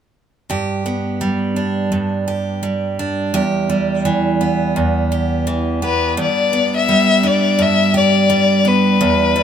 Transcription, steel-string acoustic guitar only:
0.50 1.91 G2 medium
0.50 2.27 G4 soft
0.86 3.69 B3 soft
1.21 2.62 G3 medium
1.56 2.98 D4 soft
1.92 3.33 G2 medium
2.28 3.34 G4 soft
2.63 3.70 G3 medium
2.99 3.43 D4 soft
3.34 4.75 E2 medium
3.34 5.11 G4 medium
3.70 6.53 G3 soft
4.05 5.46 E3 medium
4.41 5.82 B3 soft
4.76 6.17 E2 medium
5.12 7.94 G4 medium
5.47 6.26 E3 medium
5.82 6.53 B3 soft
6.17 7.57 G2 medium
6.53 8.64 B3 soft
6.89 8.29 G3 medium
7.23 9.09 D4 soft
7.59 9.00 G2 medium
7.94 9.43 G4 medium
8.30 9.36 G3 medium
8.65 9.35 B3 soft
9.01 9.43 E2 medium
9.36 9.43 G3 soft

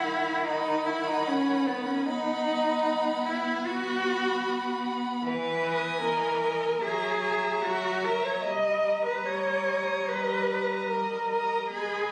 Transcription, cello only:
0.00 0.48 E4 medium
0.46 0.87 D#4 loud
0.86 1.09 E4 medium
1.07 1.29 D#4 medium
1.27 1.69 C#4 loud
1.67 1.87 B3 loud
1.87 2.08 C#4 medium
2.06 3.28 D#4 loud
3.26 3.67 E4 medium
3.66 4.85 F#4 loud
5.23 5.98 B4 medium
6.02 6.83 A#4 medium
6.82 7.65 G#4 medium
7.63 8.06 F#4 loud
8.04 8.27 A#4 medium
8.25 8.43 C#5 medium
8.44 9.04 D#5 loud
9.06 9.27 B4 medium
9.25 10.10 C#5 medium
10.09 10.92 B4 medium
10.90 11.71 A#4 medium
11.71 12.12 G#4 medium

